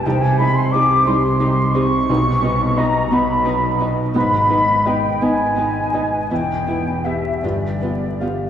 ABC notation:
X:1
M:6/8
L:1/16
Q:3/8=58
K:Cm
V:1 name="Flute section"
g a =b c' d'2 c'4 _d'2- | _d'4 b2 =b4 z2 | _c'4 g2 a6 | g4 =e2 d6 |]
V:2 name="Grand piano"
C,,2 E2 c2 G,2 E2 C2 | =B,,,2 ^D2 ^d2 =B,2 D2 d2 | A,,2 E2 e2 _C2 E2 e2 | =E,,2 =B,2 [G=e]2 G,,2 B,2 [Gf]2 |]
V:3 name="Viola section"
[G,E]2 [G,E]2 [G,E]2 [G,E]2 [G,E]2 [G,E]2 | [=B,^D]2 [B,D]2 [B,D]2 [B,D]2 [B,D]2 [B,D]2 | [_CE]2 [CE]2 [CE]2 [CE]2 [CE]2 [CE]2 | [=B,=E]2 [B,E]2 [B,E]2 [B,F]2 [B,F]2 [B,F]2 |]
V:4 name="Harp"
[C,G,G]2 G,2 C2 G2 E2 G,2 | =B,,2 =B,2 ^d2 =B2 ^D2 B,2 | A,,2 _C2 e2 _c2 E2 C2 | =E,,2 =B,2 [G=e]2 G,,2 B,2 [Gf]2 |]
V:5 name="Cello section" clef=bass
C,6 C,6 | =B,,6 B,,6 | A,,6 A,,6 | =E,,6 G,,6 |]
V:6 name="Double bass section" clef=bass
C,,6 C,,6 | =B,,,6 B,,,6 | A,,,6 A,,,6 | =E,,,6 G,,,6 |]